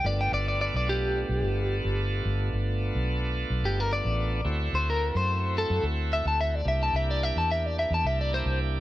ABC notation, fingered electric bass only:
X:1
M:4/4
L:1/16
Q:"Swing 16ths" 1/4=109
K:Gmix
V:1 name="Fingered electric bass" clef=bass
G,,,2 G,,,3 B,,,4 B,,, G,,,3 G,,,3 | G,,,2 G,,,3 B,,,4 B,,, G,,,3 A,,,3 | D,,2 D,,3 ^F,,4 F,, D,,3 D,,3 | C,,2 C,,3 E,,4 E,, C,,3 C,,3 |]